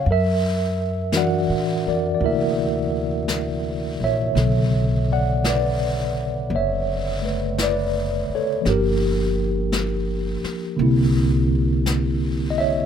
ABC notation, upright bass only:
X:1
M:4/4
L:1/8
Q:"Swing" 1/4=56
K:F#phr
V:1 name="Upright bass" clef=bass
F,,2- (3F,, A,, =F,, D,,3 ^A,,, | B,,,4 F,,,3 z | G,,,3 z =C,,4 |]